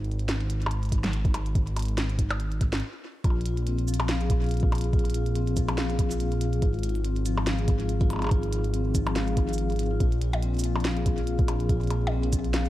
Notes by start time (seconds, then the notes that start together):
Already playing: G#1
0.04 closed hi-hat
0.11 closed hi-hat
0.19 closed hi-hat
0.29 snare, closed hi-hat
0.40 closed hi-hat
0.50 closed hi-hat
0.62 closed hi-hat
0.66 percussion blips
0.71 closed hi-hat
0.83 closed hi-hat
0.85 closed hi-hat
0.89 kick, closed hi-hat
0.92 closed hi-hat
1.04 snare, closed hi-hat
1.13 closed hi-hat
1.25 kick, closed hi-hat
1.34 closed hi-hat, percussion blips
1.46 closed hi-hat
1.55 kick, closed hi-hat
1.67 closed hi-hat
1.77 closed hi-hat, percussion blips
1.79 closed hi-hat
1.82 closed hi-hat
1.85 closed hi-hat
1.88 closed hi-hat
1.98 snare, closed hi-hat
2.10 closed hi-hat
2.19 kick, closed hi-hat
2.31 closed hi-hat, percussion blips
2.40 closed hi-hat
2.52 closed hi-hat
2.61 kick, closed hi-hat
2.73 snare, closed hi-hat
2.75 closed hi-hat
2.77 closed hi-hat
2.80 closed hi-hat
3.24 A#1 F4, kick, closed hi-hat, percussion blips
3.30 percussion blips
3.41 closed hi-hat
3.45 F4, closed hi-hat
3.57 closed hi-hat
3.67 C4, closed hi-hat
3.79 closed hi-hat
3.88 F3, shaker
3.94 closed hi-hat
4.00 closed hi-hat, percussion blips
4.09 F5, snare, closed hi-hat
4.21 G#4, closed hi-hat
4.30 kick, closed hi-hat
4.42 F4, closed hi-hat
4.44 closed hi-hat
4.46 closed hi-hat
4.49 closed hi-hat
4.51 closed hi-hat
4.54 closed hi-hat
4.57 closed hi-hat
4.60 F4, kick, closed hi-hat
4.72 closed hi-hat, percussion blips
4.75 closed hi-hat
4.78 closed hi-hat
4.81 G#4, closed hi-hat
4.84 closed hi-hat
4.93 F4, kick, closed hi-hat
4.99 closed hi-hat
5.05 closed hi-hat
5.10 closed hi-hat
5.14 F4, closed hi-hat
5.26 closed hi-hat
5.35 C4, closed hi-hat
5.47 closed hi-hat
5.57 F3, kick, closed hi-hat, shaker
5.69 closed hi-hat, percussion blips
5.78 F5, snare
5.90 G#4, closed hi-hat
5.99 kick, closed hi-hat
6.11 F4, closed hi-hat, shaker
6.20 closed hi-hat
6.32 F4, closed hi-hat
6.41 closed hi-hat
6.53 G#4, closed hi-hat
6.62 G#1 F4, kick, closed hi-hat
6.74 closed hi-hat
6.79 closed hi-hat
6.83 F4, closed hi-hat
6.89 closed hi-hat
6.95 closed hi-hat
7.05 C4, closed hi-hat
7.16 closed hi-hat
7.26 F3, closed hi-hat, shaker
7.38 percussion blips
7.47 F5, snare, closed hi-hat
7.59 G#4, closed hi-hat
7.68 kick, closed hi-hat
7.80 F4, closed hi-hat
7.89 closed hi-hat
8.01 F4, kick, closed hi-hat
8.10 closed hi-hat, percussion blips
8.13 percussion blips
8.16 percussion blips
8.19 closed hi-hat, percussion blips
8.22 G#4, percussion blips
8.24 percussion blips
8.27 percussion blips
8.29 F4, kick, closed hi-hat, percussion blips
8.43 closed hi-hat
8.52 F4, closed hi-hat
8.64 closed hi-hat
8.74 C4, closed hi-hat
8.95 F3, kick, closed hi-hat, shaker
9.07 closed hi-hat, percussion blips
9.16 F5, snare, closed hi-hat
9.28 G#4, closed hi-hat
9.37 F4, kick, closed hi-hat
9.49 F4, closed hi-hat
9.53 shaker
9.58 closed hi-hat
9.70 G#4, closed hi-hat
9.72 closed hi-hat
9.76 closed hi-hat
9.79 closed hi-hat
9.83 closed hi-hat
9.91 F4
10.00 A#1 F4, kick, closed hi-hat
10.12 closed hi-hat
10.21 F4, closed hi-hat
10.33 closed hi-hat, percussion blips
10.42 C4, closed hi-hat
10.54 closed hi-hat
10.57 closed hi-hat
10.59 closed hi-hat, shaker
10.61 F3, closed hi-hat
10.64 closed hi-hat
10.76 percussion blips
10.80 closed hi-hat
10.85 F5, snare, closed hi-hat
10.97 G#4, closed hi-hat
11.06 kick, closed hi-hat
11.18 F4, closed hi-hat
11.27 closed hi-hat
11.39 F4, kick, closed hi-hat
11.48 closed hi-hat, percussion blips
11.60 G#4, closed hi-hat
11.69 F4, kick, closed hi-hat
11.81 closed hi-hat
11.83 closed hi-hat
11.87 F4, closed hi-hat
11.90 closed hi-hat, percussion blips
12.07 percussion blips
12.12 C4
12.23 closed hi-hat
12.33 F3, kick, closed hi-hat, shaker
12.44 closed hi-hat
12.54 F5, snare, closed hi-hat
12.66 G#4, closed hi-hat